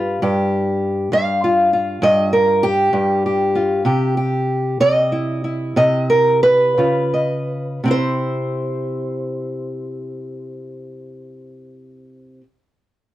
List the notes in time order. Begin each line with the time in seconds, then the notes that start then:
Already playing: G2 F4 B4
0.22 G2 G4
1.12 G2 F5
1.44 F4
1.73 F4
2.02 G2 D#5
2.33 A#4
2.63 G4
2.93 G2
3.26 G4
3.55 F4
3.85 C3 G4
4.17 G4
4.80 C3 D#5
5.12 E4
5.44 E4
5.76 C3 D#5
6.10 A#4
6.43 B4
6.78 C#3 F4
7.14 D#5
7.84 C3 C4
7.88 E4 C5